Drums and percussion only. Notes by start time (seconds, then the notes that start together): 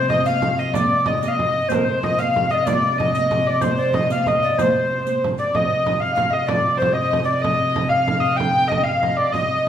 0.10 frame drum
0.26 riq
0.42 riq, frame drum
0.59 frame drum
0.74 riq, frame drum
0.90 frame drum
1.06 riq, frame drum
1.23 riq, frame drum
1.39 frame drum
1.70 riq, frame drum
2.03 frame drum
2.19 riq
2.34 riq, frame drum
2.52 frame drum
2.67 riq, frame drum
3.00 frame drum
3.15 riq
3.31 riq, frame drum
3.47 frame drum
3.61 riq, frame drum
3.94 frame drum
4.10 riq
4.26 riq, frame drum
4.59 riq, frame drum
5.07 riq, frame drum
5.24 frame drum
5.38 riq, frame drum
5.55 frame drum
5.71 frame drum
5.86 frame drum
6.02 frame drum
6.17 frame drum
6.34 frame drum
6.48 frame drum
6.66 frame drum
6.82 frame drum
6.99 frame drum
7.13 frame drum
7.29 frame drum
7.44 frame drum
7.59 frame drum
7.76 frame drum
7.92 frame drum
8.08 frame drum
8.24 frame drum
8.40 frame drum
8.72 frame drum
8.88 frame drum
9.03 frame drum
9.34 frame drum
9.51 frame drum